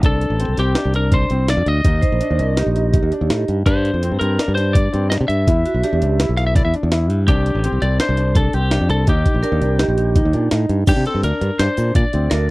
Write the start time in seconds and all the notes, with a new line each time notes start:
0.03 C2 D4 A4, kick, closed hi-hat
0.21 closed hi-hat
0.30 A1
0.40 C4, closed hi-hat
0.48 C2
0.57 C2 C4 G4, snare, closed hi-hat
0.75 D4, snare, closed hi-hat
0.85 C2
0.94 D4 A#4, closed hi-hat
1.12 D4 C5, kick, closed hi-hat
1.30 C2 C4, closed hi-hat
1.48 D4 D5, snare, closed hi-hat
1.57 F2
1.66 D2 D#5, closed hi-hat
1.84 D#2 D#4, kick, closed hi-hat
2.02 C5, kick, closed hi-hat
2.12 A#1
2.21 D4, closed hi-hat
2.31 D#2
2.39 C2 D4 A#4, closed hi-hat
2.57 D#4 G4, snare, closed hi-hat
2.66 A#1
2.76 D#4, closed hi-hat
2.93 D#4 G4, kick, closed hi-hat
3.03 D#2
3.12 D4, closed hi-hat
3.21 D#2
3.30 A2 D#4, snare, closed hi-hat
3.48 G2, closed hi-hat
3.66 G2 D4 C5, kick, closed hi-hat
3.85 closed hi-hat
3.94 F2
4.03 C4, closed hi-hat
4.12 G2
4.19 G2 C4 A#4, closed hi-hat
4.39 D4, snare, closed hi-hat
4.48 G2
4.55 D4 C5, snare, closed hi-hat
4.73 D4 D5, kick, closed hi-hat
4.93 G2 C4, closed hi-hat
5.10 D4 D#5, snare, closed hi-hat
5.21 C3
5.28 G2 E5, closed hi-hat
5.47 E2 E4, kick, closed hi-hat
5.65 F#4, closed hi-hat
5.74 B1
5.83 D4 G4, snare, closed hi-hat
5.93 E2
6.02 C#2 D4, closed hi-hat
6.20 E4, snare, closed hi-hat
6.29 B1
6.37 E4 F5, snare, closed hi-hat
6.47 E5
6.56 E4 D5, kick, snare, closed hi-hat
6.65 E2 E5
6.74 D4, closed hi-hat
6.83 E2
6.92 E4, snare, closed hi-hat
7.10 G2, closed hi-hat
7.28 C2 D4 G4, kick, closed hi-hat
7.46 closed hi-hat
7.55 A1
7.64 C4, closed hi-hat
7.72 C2
7.82 C2 C4 D5, closed hi-hat
8.00 D4 C5, snare, closed hi-hat
8.09 C2
8.17 D4, closed hi-hat
8.35 D4 A4, kick, closed hi-hat
8.53 C2 C4 G4, closed hi-hat
8.71 D4, snare, closed hi-hat
8.81 F2
8.89 C2 A4, closed hi-hat
9.07 D#2 D#4 G4, kick, closed hi-hat
9.26 kick, closed hi-hat
9.34 A#1
9.43 D4 A#4, closed hi-hat
9.52 D#2
9.61 C2 D4, closed hi-hat
9.79 D#4 G4, snare, closed hi-hat
9.88 A#1
9.98 D#4, closed hi-hat
10.16 D#4, kick, closed hi-hat
10.25 D#2
10.33 A#2 D4, closed hi-hat
10.51 A2 D#4, snare, closed hi-hat
10.69 G2, closed hi-hat
10.87 G2 D4 G4, kick, closed hi-hat, crash, shaker
10.96 C3
11.06 C4 A4, closed hi-hat
11.15 G2
11.23 D2 D4 A#4, closed hi-hat, shaker
11.41 G2, closed hi-hat
11.59 G2 D4 C5, snare, closed hi-hat
11.77 A#2 D4, closed hi-hat, shaker
11.95 A#2 D5, kick, closed hi-hat
12.13 D2 C4, closed hi-hat
12.30 D2 D4 A#4, snare, closed hi-hat